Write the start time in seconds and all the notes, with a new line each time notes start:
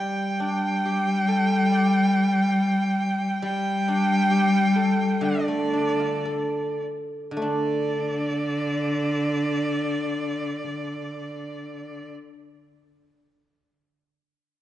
Already playing: G3 G5
0.40 D4
0.85 G4
1.28 A4
1.72 D5
3.42 G3 G5
3.88 D4
4.31 G4
4.76 A4
5.21 D3 D5
5.26 D3
5.48 A3
5.73 D4
6.00 F4
6.25 A4
7.31 D3
7.37 A3
7.42 D3 D4 D5